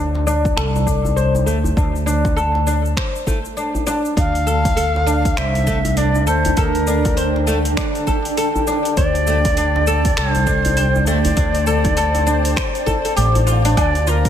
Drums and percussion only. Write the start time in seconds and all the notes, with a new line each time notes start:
0.15 djembe slap, djembe tone
0.27 shaker
0.45 kick, shaker
0.57 finger snap, shaker
0.76 djembe tone, shaker
0.87 kick, shaker
1.05 djembe slap, djembe bass, shaker
1.17 shaker
1.35 djembe tone, shaker
1.47 shaker
1.64 djembe bass, shaker
1.77 kick, shaker
1.96 shaker
2.08 shaker
2.25 kick, djembe slap, djembe tone, shaker
2.37 shaker
2.55 djembe slap
2.67 djembe tone, shaker
2.85 shaker
2.97 finger snap, kick, shaker
3.15 shaker
3.26 kick, djembe slap, djembe tone, djembe bass, shaker
3.45 shaker
3.57 shaker
3.75 djembe bass, shaker
3.87 djembe slap, djembe tone, shaker
4.05 shaker
4.17 kick, open hi-hat, shaker
4.35 open hi-hat, shaker
4.47 shaker
4.65 kick, open hi-hat, djembe slap, djembe tone, shaker
4.77 open hi-hat, shaker
4.95 djembe slap, djembe tone
5.08 shaker
5.25 kick, open hi-hat, shaker
5.37 finger snap, open hi-hat, shaker
5.54 open hi-hat, djembe tone, shaker
5.67 kick, shaker
5.85 open hi-hat, djembe slap, djembe bass, shaker
5.97 open hi-hat, shaker
6.15 djembe tone, shaker
6.27 shaker
6.45 open hi-hat, djembe bass, shaker
6.57 kick, open hi-hat, shaker
6.75 open hi-hat, shaker
6.87 shaker
7.05 kick, open hi-hat, djembe slap, djembe tone, shaker
7.17 open hi-hat, shaker
7.36 djembe slap
7.47 djembe tone, shaker
7.65 open hi-hat, shaker
7.77 finger snap, kick, open hi-hat, shaker
7.95 open hi-hat, shaker
8.07 kick, djembe slap, djembe tone, djembe bass, shaker
8.25 open hi-hat, shaker
8.37 open hi-hat, shaker
8.56 djembe bass, shaker
8.67 djembe slap, djembe tone, shaker
8.85 open hi-hat, shaker
8.97 kick, open hi-hat, shaker
9.15 open hi-hat, shaker
9.27 shaker
9.45 kick, open hi-hat, djembe slap, djembe tone, shaker
9.57 open hi-hat, shaker
9.75 djembe slap, djembe tone
9.87 shaker
10.05 kick, open hi-hat, shaker
10.17 finger snap, open hi-hat, shaker
10.35 open hi-hat, djembe tone, shaker
10.47 kick, shaker
10.65 open hi-hat, djembe slap, djembe bass, shaker
10.77 open hi-hat, shaker
10.95 djembe tone, shaker
11.07 shaker
11.25 open hi-hat, djembe bass, shaker
11.37 kick, open hi-hat, shaker
11.55 open hi-hat, shaker
11.67 shaker
11.84 kick, open hi-hat, djembe slap, djembe tone, djembe bass, shaker
11.97 open hi-hat, shaker
12.15 open hi-hat, djembe slap, djembe tone, shaker
12.27 djembe tone, shaker
12.45 open hi-hat, shaker
12.57 finger snap, kick, open hi-hat, shaker
12.75 open hi-hat, shaker
12.87 kick, djembe slap, djembe tone, djembe bass, shaker
13.05 open hi-hat, shaker
13.17 open hi-hat, shaker
13.35 open hi-hat, djembe bass, shaker
13.47 djembe slap, djembe tone, shaker
13.65 open hi-hat, shaker
13.77 kick, open hi-hat, low woodblock, shaker
13.95 open hi-hat, shaker
14.07 shaker
14.25 kick, open hi-hat, shaker